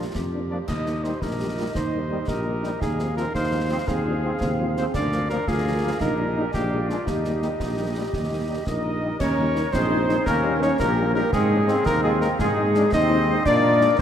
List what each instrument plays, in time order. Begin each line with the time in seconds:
Already playing: woodwind section F4, euphonium G4, cornet A#4
0.15 tuba F2, woodwind section G4, concert bass drum, snare
0.33 french horn section F3 A#3 D4
0.50 trombone section F3 D4, french horn section F3 A#3 D4, cornet D5
0.67 tuba D#2, euphonium D#4, woodwind section G4 D#5, cornet D#5, concert bass drum, snare, crash
0.86 french horn section G3 A#3 D#4, snare
1.03 trombone section G3 D#4, french horn section G3 A#3 D#4, cornet C5, snare
1.21 tuba A#1, euphonium D#4, woodwind section G4 D#5, cornet A#4, concert bass drum, snare
1.39 french horn section G3 A#3 D#4, euphonium G4
1.57 trombone section G3 D#4, french horn section G3 A#3 D#4, euphonium F4
1.74 tuba D#2, euphonium D#4, cornet C5, concert bass drum, snare
1.93 french horn section G3 A#3 D#4
2.10 trombone section G3 D#4, french horn section G3 A#3 D#4
2.28 tuba A#1, euphonium G4, woodwind section G4 D#5, cornet A#4, concert bass drum, snare
2.46 french horn section G3 A#3 D#4
2.63 french horn section G3 A#3 D#4, trombone section G3 D#4, snare
2.81 tuba D#2, euphonium D#4, woodwind section G#4 F5, cornet G#4, concert bass drum, snare
2.99 french horn section F3 C4 F4, snare
3.16 trombone section F3 C4, french horn section F3 C4 F4, cornet A#4, snare
3.34 tuba D#2, euphonium D#4, woodwind section G#4 F5, cornet C5, concert bass drum, snare
3.52 french horn section F3 C4 F4
3.69 trombone section F3 C4, french horn section F3 C4 F4
3.87 tuba D#2, euphonium C4, woodwind section G#4 F5, cornet G#4, concert bass drum, snare
4.06 french horn section F3 C4 F4, euphonium D4
4.23 trombone section F3 C4, french horn section F3 C4 F4, euphonium C4
4.41 tuba D#2, euphonium C4, concert bass drum, snare
4.59 french horn section F3 C4 F4
4.77 french horn section F3 C4 F4, trombone section F3 C4, cornet C5, snare
4.94 tuba D2, euphonium D4, woodwind section A#4 F5, cornet D5, concert bass drum, snare, crash
5.12 french horn section F3 A#3 F4, snare
5.30 french horn section F3 A#3 F4, trombone section F3 A#3, cornet A#4, snare
5.47 tuba D2, euphonium F4, cornet G#4, woodwind section A#4 F5, concert bass drum, snare
5.65 french horn section F3 A#3 F4
5.83 trombone section F3 A#3, french horn section F3 A#3 F4
6.00 tuba A#1, euphonium D#4, woodwind section G4 D#5, cornet A#4, concert bass drum, snare
6.19 french horn section G3 A#3 D#4, euphonium D4
6.36 trombone section G3 D#4, french horn section G3 A#3 D#4, euphonium D#4
6.53 tuba A#1, euphonium F4, cornet G4, woodwind section G#4 D5, concert bass drum, snare
6.71 french horn section G#3 A#3 D4
6.89 french horn section G#3 A#3 D4, trombone section G#3 D4, cornet F4, snare
7.07 tuba D#2, cornet D#4, woodwind section G4 D#5, euphonium G4, concert bass drum, snare
7.25 french horn section G3 A#3 D#4, snare
7.42 trombone section G3 D#4, french horn section G3 A#3 D#4, snare
7.60 tuba A#1, concert bass drum, snare
7.77 french horn section G3 A#3 D#4
7.95 french horn section G3 A#3 D#4, trombone section G3 D#4
8.13 tuba D#2, concert bass drum, snare
8.31 french horn section G3 A#3 D#4
8.48 french horn section G3 A#3 D#4, trombone section G3 D#4
8.66 tuba A#1, euphonium D#4, flute section A#4, woodwind section D#5, cornet D#5, concert bass drum, snare
8.85 french horn section G3 A#3 D#4
9.02 french horn section G3 A#3 D#4, trombone section G3 D#4
9.20 tuba D#2, euphonium C#4, flute section A#4, woodwind section C#5, cornet C#5, concert bass drum, snare, crash
9.38 french horn section G3 A#3 D#4
9.56 french horn section G3 A#3 D#4, snare
9.72 tuba A#1, euphonium C4, trombone section D#4, flute section G#4, cornet C5, woodwind section C5, concert bass drum, snare
9.91 french horn section G3 A#3 D#4
10.09 french horn section G3 A#3 D#4, snare
10.26 tuba D#2, euphonium A#3, trombone section C#4, flute section G4, cornet A#4, woodwind section A#4, concert bass drum, snare
10.44 french horn section G3 A#3 D#4
10.62 french horn section G3 A#3 D#4, euphonium C#4, flute section A#4, cornet C#5, woodwind section C#5, snare
10.79 tuba A#1, euphonium A#3, trombone section A#3, flute section G4, cornet A#4, woodwind section A#4, concert bass drum, snare
10.98 french horn section G3 A#3 D#4
11.15 french horn section G3 A#3 D#4, euphonium A#3, flute section G4, woodwind section A#4, cornet A#4
11.32 tuba G#2, euphonium G#3, trombone section C4, flute section D#4, cornet G#4, woodwind section G#4, concert bass drum, snare
11.50 french horn section G#3 C4 D#4, trombone section D4
11.67 french horn section G#3 C4 D#4, trombone section C4, snare
11.86 tuba D#2, euphonium A#3, flute section G4, woodwind section A#4, cornet A#4, concert bass drum, snare
12.03 euphonium G#3, french horn section G#3 C4 D#4, flute section F4, woodwind section G#4, cornet G#4
12.21 french horn section G#3 C4 D#4, euphonium A#3, flute section G4, woodwind section A#4, cornet A#4, snare
12.39 tuba G#2, euphonium G#3, flute section D#4, trombone section F4, woodwind section G#4, cornet G#4, concert bass drum, snare
12.57 french horn section G#3 C4 D#4, trombone section D#4
12.75 french horn section G#3 C4 D#4, trombone section D4, snare
12.92 tuba D#2, trombone section C4, euphonium D#4, flute section C5, cornet D#5, woodwind section D#5, concert bass drum, snare
13.10 french horn section G#3 C4 D#4
13.28 french horn section G#3 C4 D#4
13.46 tuba A#2, trombone section A#3, euphonium D4, flute section A#4, woodwind section D5, cornet D5, concert bass drum, snare, crash
13.64 french horn section G#3 A#3 D4
13.81 french horn section G#3 A#3 D4, snare